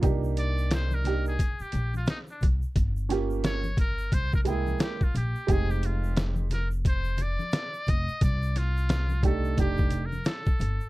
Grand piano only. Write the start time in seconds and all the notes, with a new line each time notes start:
Already playing: F4
0.01 A#3 D4 D#4 G4
1.04 A#3 D4 D#4 G4
3.09 A#3 C#4 F4 G4
4.45 G#3 A#3 E4 G5
5.47 G#3 C4 D#4 G4
9.23 A3 D4 D#4 G4
9.57 A3 D4 D#4 G4